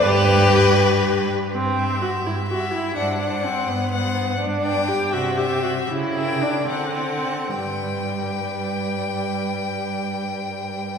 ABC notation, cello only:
X:1
M:6/8
L:1/8
Q:3/8=80
K:G
V:1 name="Cello" clef=bass
G,,4- G,, z | G,,3 G,,3 | G,,3 G,,3 | G,,3 C,3 |
^C,3 D,3 | G,,6- | G,,6 |]